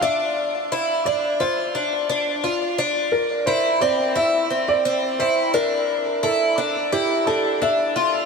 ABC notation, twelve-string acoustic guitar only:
X:1
M:4/4
L:1/8
Q:1/4=87
K:Dm
V:1 name="Twelve-string acoustic guitar"
D2 E D F D D F | D2 E C E C C E | D2 E D E D D F |]